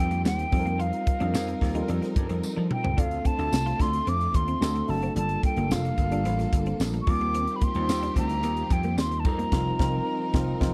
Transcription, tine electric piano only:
Already playing: G3 C4 D#4 F4 A#4
0.52 G3 C4 D#4 F4 A4
0.59 A#4
1.20 G3 C4 D#4 F4 A#4
1.75 G3 C4 D#4 F4 A4
1.83 A#4
2.97 A3 C4 D4 F4 A4
3.38 A3 C4 D4 F4 A4
4.60 A3 C4 D4 F#4 A4
4.88 A3 C4 D4 F#4 A4
5.15 G3 A#3 D4 F4 A4
5.56 G3 A3 D4 F4 A4
5.63 A#3
6.11 G3 A#3 D4 F4 A4
7.06 G3 C4 D#4 F4 A#4
7.75 G3 C4 D#4 F4 C5
9.24 G3 C4 D#4 F4 A4
9.32 A#4
9.52 C4 D#4 F4
9.60 A#4
9.79 C4 D#4 F4 A#4
10.34 C4 D#4 F4 A#4
10.60 C4 D#4 F4 A#4

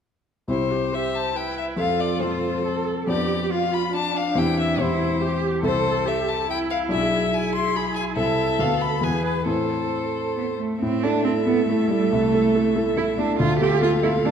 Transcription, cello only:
0.94 G4
1.37 E4
1.80 F4
2.66 A4
3.09 G4
3.51 F4
3.94 D4
4.36 E4
5.22 G4
5.63 A4
6.06 G4
6.49 E4
7.34 E4
7.76 G#4
8.19 A4
9.04 G#4
9.47 A4
10.37 B3
10.59 A3
10.81 C4
11.03 D4
11.24 C4
11.46 B3
11.68 A3
11.90 G3
12.12 A3
12.97 E4
13.18 D4
13.40 F4
13.60 G4
13.82 F4
14.03 E4
14.25 D4

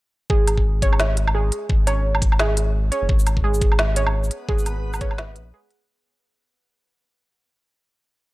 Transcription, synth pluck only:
0.30 G#4
0.82 C#5
1.35 G#4
1.87 C#5
2.39 G#4
2.92 C#5
3.44 G#4
3.96 C#5
4.49 G#4
5.01 C#5
5.54 G#4

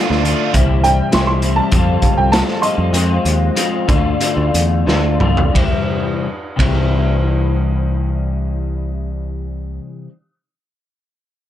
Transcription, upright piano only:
0.84 G5
1.14 C6
1.27 C6
1.56 A5
2.17 G5
2.32 A5
2.62 D#5 C6

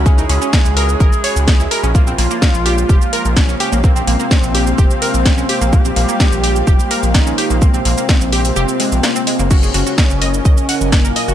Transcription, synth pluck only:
0.06 C#4
0.18 D#4
0.29 C#4
0.42 C#4
0.77 A#4
1.00 A#4
1.24 C#5
1.60 E4
1.71 A#4
1.83 C#4
1.95 A#3
2.07 C4
2.18 A#3
2.31 A#3
2.66 G4
2.89 G4
3.13 A#4
3.49 C#4
3.60 G4
3.72 A#3
3.84 A#3
3.96 C4
4.07 A#3
4.20 A#3
4.55 G4
4.78 G4
5.02 A#4
5.38 C#4
5.49 G4
5.61 A#3
5.73 A#3
5.85 C4
5.96 A#3
6.09 A#3
6.44 G4
6.67 G4
6.91 A#4
7.27 C#4
7.38 G4
7.50 A#3
7.62 A#3
7.74 C4
7.85 A#3
7.98 A#3
8.33 G4
8.56 G4
8.80 G#3
9.03 A#3
9.16 C4
9.27 G#3
9.39 A#3
9.51 F#4
9.63 G#4
9.74 F#4
9.87 F#4
10.22 D#5
10.45 D#5
10.69 F#5
11.05 A#4
11.16 D#5
11.28 F#4

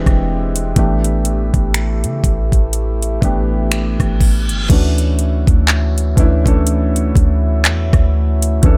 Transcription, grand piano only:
Already playing: E3 G#3 C4 D4 G4
0.75 E3 A3 B3 D4 G4
3.21 E3 A3 B3 D4 G4
4.69 E3 A3 C#4 D4 F#4
6.16 E3 A3 C#4 D4 E4
6.44 E3 A3 C#4 D4 A4
8.62 E3 A3 C#4 D4 A4

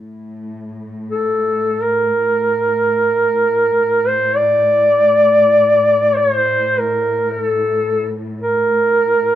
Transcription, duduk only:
1.11 A4
1.82 A#4
4.08 C5
4.37 D5
6.17 C#5
6.36 C5
6.79 A#4
7.31 A#4
7.43 A4
8.42 A#4

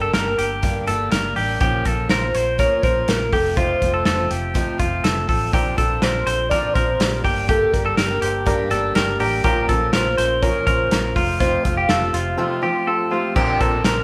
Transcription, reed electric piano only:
5.54 C4 D4 A#4
5.78 C4 D4 A4
6.02 C4 D4 F4
6.26 C4 D4 A4
6.51 C4 D4 C5
6.76 C4 D4 A#4
7.00 C4 D4 G4
7.24 D4 G4 A#4
7.73 D4 G4 A#4
7.98 D4 G4 A#4
8.23 D4 G4 C5
8.47 D4 G4 A#4
8.71 D4 G4 A4
8.95 D4 G4 A#4
9.20 D4 G4 A#4
9.44 C#4 F4 A#4
9.69 C#4 F4 A#4
9.93 C#4 F4 C5
10.18 C#4 F4 A#4
10.42 C#4 F4 A#4
10.67 C#4 F4 A#4
10.91 C#4 F4 A#4
11.16 C4 F4 A4
11.65 C4 F4 A4
11.89 C4 F4 G4
12.14 C4 F4 C5
12.37 C4 F4 A4
12.62 C4 F4 C5
12.87 C4 F4 A4
13.11 C4 F4 G4
13.36 C4 D4 A#4
13.61 C4 D4 A#4
13.85 C4 D4 A#4

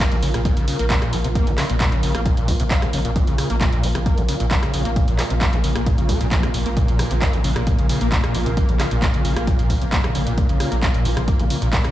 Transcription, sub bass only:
0.12 A#1
0.23 A#1
0.34 A#1
0.57 A#1
0.79 A#1
1.13 A#1
1.24 A#1
1.47 A#1
1.70 A#1
1.92 A#1
2.03 A#1
2.15 A#1
2.37 A#1
2.60 A#1
2.93 A#1
3.05 A#1
3.27 A#1
3.50 A#1
3.73 A#1
3.83 A#1
3.95 A#1
4.18 A#1
4.40 A#1
4.74 A#1
4.85 A#1
5.08 A#1
5.30 A#1
5.53 A#1
5.64 A#1
5.75 A#1
5.98 A#1
6.21 A#1
6.54 A#1
6.66 A#1
6.88 A#1
7.11 A#1
7.33 A#1
7.44 A#1
7.56 A#1
7.78 A#1
8.01 A#1
8.34 A#1
8.46 A#1
8.69 A#1
8.91 A#1
9.14 A#1
9.25 A#1
9.36 A#1
9.59 A#1
9.82 A#1
10.15 A#1
10.27 A#1
10.49 A#1
10.72 A#1
10.94 A#1
11.05 A#1
11.17 A#1
11.39 A#1
11.62 A#1

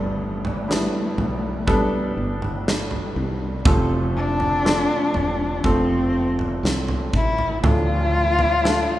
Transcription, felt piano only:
Already playing: G2 D3 G3 B3 D4 A4
0.68 G3 B3 D4 E4
1.67 G3 B3 D4 A4
3.66 C3 F3 A3 C4 A4
4.64 F3 A3 C4 A4
5.64 F3 A3 C4 A4
7.64 A2 F3 A3 D4 A4
8.63 F3 A3 D4 A4

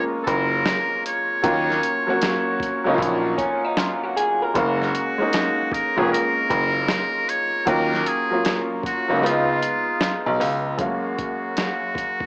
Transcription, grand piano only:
0.27 F#1
1.44 D#2
2.86 C#2
2.99 A#1
4.55 F#1
5.98 F1
6.50 F#1
7.67 D#2
9.10 C#2
9.23 C#2
10.26 B1
10.40 C#2

